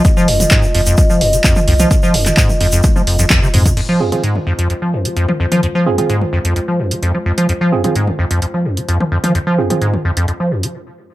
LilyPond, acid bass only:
\new Staff \with { instrumentName = "Acid bass" } { \clef bass \time 4/4 \key f \minor \tempo 4 = 129 f,16 f16 f,16 f16 aes,16 f,16 f,16 f,16 f,16 f16 f,16 f16 f,16 f16 f,16 f16 | f,16 f16 f,16 f16 aes,16 f,16 f,16 f,16 r16 f16 f,16 f,16 f,16 c16 aes,16 aes,16 | f,16 f16 f,16 f16 aes,16 f,16 f,16 f,16 f,16 f16 f,16 f16 f,16 f16 f,16 f16 | f,16 f16 f,16 f16 aes,16 f,16 f,16 f,16 f,16 f16 f,16 f16 f,16 f16 f,16 f16 |
f,16 f16 f,16 f16 aes,16 f,16 f,16 f,16 f,16 f16 f,16 f16 f,16 f16 f,16 f16 | f,16 f16 f,16 f16 aes,16 f,16 f,16 f,16 f,16 f16 f,16 f16 r4 | }